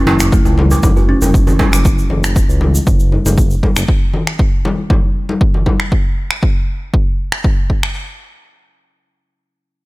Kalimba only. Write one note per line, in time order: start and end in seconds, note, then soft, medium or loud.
0.07 0.14 E4 loud
0.20 0.32 F#3 medium
0.32 0.44 A3 loud
0.46 0.57 C#3 medium
0.71 0.82 F#3 medium
0.83 0.95 F#3 medium
0.96 1.03 F#4 medium
1.09 1.16 C#4 medium
1.73 1.84 F#3 medium